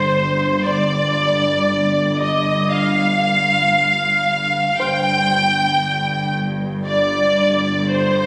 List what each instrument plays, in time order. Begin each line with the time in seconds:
Already playing: double bass section G1, synth drone G1, cello section G2, violin section C5
0.66 violin section D5, harp C6
2.20 violin section D#5, harp D6
2.72 violin section F5
4.79 synth drone G1, double bass section G1, cello section G2, harp C5 C6, violin section G5
6.86 violin section D5
7.90 violin section C5